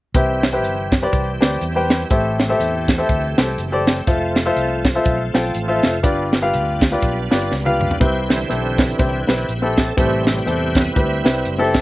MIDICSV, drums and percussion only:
0, 0, Header, 1, 2, 480
1, 0, Start_track
1, 0, Key_signature, 0, "major"
1, 0, Tempo, 491400
1, 142, Time_signature, 4, 2, 24, 8
1, 11540, End_track
2, 0, Start_track
2, 0, Title_t, "Drums"
2, 141, Note_on_c, 9, 42, 95
2, 142, Note_on_c, 9, 36, 112
2, 239, Note_off_c, 9, 42, 0
2, 240, Note_off_c, 9, 36, 0
2, 421, Note_on_c, 9, 42, 52
2, 423, Note_on_c, 9, 38, 99
2, 518, Note_off_c, 9, 42, 0
2, 521, Note_off_c, 9, 38, 0
2, 627, Note_on_c, 9, 42, 92
2, 725, Note_off_c, 9, 42, 0
2, 897, Note_on_c, 9, 42, 70
2, 898, Note_on_c, 9, 36, 88
2, 903, Note_on_c, 9, 38, 96
2, 995, Note_off_c, 9, 36, 0
2, 995, Note_off_c, 9, 42, 0
2, 1000, Note_off_c, 9, 38, 0
2, 1102, Note_on_c, 9, 42, 77
2, 1103, Note_on_c, 9, 36, 103
2, 1200, Note_off_c, 9, 42, 0
2, 1201, Note_off_c, 9, 36, 0
2, 1387, Note_on_c, 9, 42, 69
2, 1388, Note_on_c, 9, 38, 107
2, 1484, Note_off_c, 9, 42, 0
2, 1486, Note_off_c, 9, 38, 0
2, 1575, Note_on_c, 9, 42, 94
2, 1672, Note_off_c, 9, 42, 0
2, 1853, Note_on_c, 9, 42, 65
2, 1858, Note_on_c, 9, 38, 99
2, 1951, Note_off_c, 9, 42, 0
2, 1956, Note_off_c, 9, 38, 0
2, 2054, Note_on_c, 9, 42, 95
2, 2058, Note_on_c, 9, 36, 108
2, 2152, Note_off_c, 9, 42, 0
2, 2156, Note_off_c, 9, 36, 0
2, 2338, Note_on_c, 9, 42, 50
2, 2341, Note_on_c, 9, 38, 101
2, 2436, Note_off_c, 9, 42, 0
2, 2438, Note_off_c, 9, 38, 0
2, 2541, Note_on_c, 9, 42, 100
2, 2639, Note_off_c, 9, 42, 0
2, 2816, Note_on_c, 9, 36, 85
2, 2817, Note_on_c, 9, 42, 71
2, 2822, Note_on_c, 9, 38, 98
2, 2914, Note_off_c, 9, 36, 0
2, 2915, Note_off_c, 9, 42, 0
2, 2920, Note_off_c, 9, 38, 0
2, 3017, Note_on_c, 9, 42, 74
2, 3021, Note_on_c, 9, 36, 94
2, 3115, Note_off_c, 9, 42, 0
2, 3119, Note_off_c, 9, 36, 0
2, 3300, Note_on_c, 9, 42, 60
2, 3301, Note_on_c, 9, 38, 110
2, 3397, Note_off_c, 9, 42, 0
2, 3399, Note_off_c, 9, 38, 0
2, 3499, Note_on_c, 9, 42, 95
2, 3597, Note_off_c, 9, 42, 0
2, 3779, Note_on_c, 9, 42, 69
2, 3784, Note_on_c, 9, 38, 104
2, 3877, Note_off_c, 9, 42, 0
2, 3882, Note_off_c, 9, 38, 0
2, 3977, Note_on_c, 9, 42, 94
2, 3979, Note_on_c, 9, 36, 107
2, 4075, Note_off_c, 9, 42, 0
2, 4077, Note_off_c, 9, 36, 0
2, 4258, Note_on_c, 9, 42, 57
2, 4260, Note_on_c, 9, 38, 87
2, 4355, Note_off_c, 9, 42, 0
2, 4358, Note_off_c, 9, 38, 0
2, 4460, Note_on_c, 9, 42, 88
2, 4557, Note_off_c, 9, 42, 0
2, 4733, Note_on_c, 9, 42, 72
2, 4734, Note_on_c, 9, 36, 89
2, 4738, Note_on_c, 9, 38, 105
2, 4831, Note_off_c, 9, 42, 0
2, 4832, Note_off_c, 9, 36, 0
2, 4836, Note_off_c, 9, 38, 0
2, 4935, Note_on_c, 9, 42, 78
2, 4940, Note_on_c, 9, 36, 100
2, 5033, Note_off_c, 9, 42, 0
2, 5038, Note_off_c, 9, 36, 0
2, 5220, Note_on_c, 9, 42, 72
2, 5222, Note_on_c, 9, 38, 93
2, 5318, Note_off_c, 9, 42, 0
2, 5320, Note_off_c, 9, 38, 0
2, 5415, Note_on_c, 9, 42, 96
2, 5513, Note_off_c, 9, 42, 0
2, 5693, Note_on_c, 9, 42, 67
2, 5698, Note_on_c, 9, 38, 98
2, 5791, Note_off_c, 9, 42, 0
2, 5796, Note_off_c, 9, 38, 0
2, 5894, Note_on_c, 9, 42, 96
2, 5898, Note_on_c, 9, 36, 111
2, 5992, Note_off_c, 9, 42, 0
2, 5995, Note_off_c, 9, 36, 0
2, 6179, Note_on_c, 9, 42, 56
2, 6182, Note_on_c, 9, 38, 99
2, 6277, Note_off_c, 9, 42, 0
2, 6279, Note_off_c, 9, 38, 0
2, 6383, Note_on_c, 9, 42, 86
2, 6480, Note_off_c, 9, 42, 0
2, 6656, Note_on_c, 9, 36, 81
2, 6657, Note_on_c, 9, 42, 78
2, 6662, Note_on_c, 9, 38, 100
2, 6754, Note_off_c, 9, 36, 0
2, 6754, Note_off_c, 9, 42, 0
2, 6760, Note_off_c, 9, 38, 0
2, 6860, Note_on_c, 9, 42, 74
2, 6862, Note_on_c, 9, 36, 94
2, 6958, Note_off_c, 9, 42, 0
2, 6960, Note_off_c, 9, 36, 0
2, 7145, Note_on_c, 9, 42, 67
2, 7146, Note_on_c, 9, 38, 103
2, 7242, Note_off_c, 9, 42, 0
2, 7244, Note_off_c, 9, 38, 0
2, 7341, Note_on_c, 9, 38, 53
2, 7439, Note_off_c, 9, 38, 0
2, 7483, Note_on_c, 9, 48, 53
2, 7580, Note_off_c, 9, 48, 0
2, 7627, Note_on_c, 9, 45, 70
2, 7724, Note_off_c, 9, 45, 0
2, 7727, Note_on_c, 9, 43, 70
2, 7823, Note_on_c, 9, 36, 114
2, 7824, Note_on_c, 9, 42, 92
2, 7825, Note_off_c, 9, 43, 0
2, 7921, Note_off_c, 9, 36, 0
2, 7922, Note_off_c, 9, 42, 0
2, 8107, Note_on_c, 9, 42, 55
2, 8110, Note_on_c, 9, 38, 99
2, 8205, Note_off_c, 9, 42, 0
2, 8208, Note_off_c, 9, 38, 0
2, 8309, Note_on_c, 9, 42, 93
2, 8406, Note_off_c, 9, 42, 0
2, 8580, Note_on_c, 9, 36, 87
2, 8581, Note_on_c, 9, 42, 68
2, 8586, Note_on_c, 9, 38, 105
2, 8678, Note_off_c, 9, 36, 0
2, 8679, Note_off_c, 9, 42, 0
2, 8684, Note_off_c, 9, 38, 0
2, 8784, Note_on_c, 9, 42, 83
2, 8785, Note_on_c, 9, 36, 109
2, 8881, Note_off_c, 9, 42, 0
2, 8883, Note_off_c, 9, 36, 0
2, 9069, Note_on_c, 9, 42, 64
2, 9071, Note_on_c, 9, 38, 99
2, 9166, Note_off_c, 9, 42, 0
2, 9168, Note_off_c, 9, 38, 0
2, 9267, Note_on_c, 9, 42, 93
2, 9364, Note_off_c, 9, 42, 0
2, 9544, Note_on_c, 9, 42, 74
2, 9549, Note_on_c, 9, 38, 106
2, 9552, Note_on_c, 9, 36, 78
2, 9642, Note_off_c, 9, 42, 0
2, 9647, Note_off_c, 9, 38, 0
2, 9650, Note_off_c, 9, 36, 0
2, 9745, Note_on_c, 9, 36, 112
2, 9745, Note_on_c, 9, 42, 98
2, 9842, Note_off_c, 9, 42, 0
2, 9843, Note_off_c, 9, 36, 0
2, 10028, Note_on_c, 9, 42, 48
2, 10030, Note_on_c, 9, 38, 96
2, 10126, Note_off_c, 9, 42, 0
2, 10128, Note_off_c, 9, 38, 0
2, 10232, Note_on_c, 9, 42, 93
2, 10330, Note_off_c, 9, 42, 0
2, 10503, Note_on_c, 9, 36, 85
2, 10509, Note_on_c, 9, 42, 78
2, 10515, Note_on_c, 9, 38, 97
2, 10601, Note_off_c, 9, 36, 0
2, 10607, Note_off_c, 9, 42, 0
2, 10612, Note_off_c, 9, 38, 0
2, 10708, Note_on_c, 9, 36, 105
2, 10708, Note_on_c, 9, 42, 83
2, 10806, Note_off_c, 9, 36, 0
2, 10806, Note_off_c, 9, 42, 0
2, 10995, Note_on_c, 9, 42, 61
2, 10997, Note_on_c, 9, 38, 102
2, 11093, Note_off_c, 9, 42, 0
2, 11094, Note_off_c, 9, 38, 0
2, 11187, Note_on_c, 9, 42, 90
2, 11285, Note_off_c, 9, 42, 0
2, 11467, Note_on_c, 9, 42, 71
2, 11472, Note_on_c, 9, 38, 102
2, 11474, Note_on_c, 9, 36, 78
2, 11540, Note_off_c, 9, 36, 0
2, 11540, Note_off_c, 9, 38, 0
2, 11540, Note_off_c, 9, 42, 0
2, 11540, End_track
0, 0, End_of_file